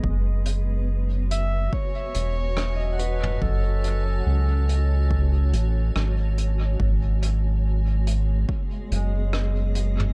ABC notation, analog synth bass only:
X:1
M:4/4
L:1/8
Q:"Swing 16ths" 1/4=71
K:F#dor
V:1 name="Analog synth bass" clef=bass
F,,,4 z E,,,3 | F,,,2 C,,3 A,,, G,,,2 | G,,,4 z F,,,3 |]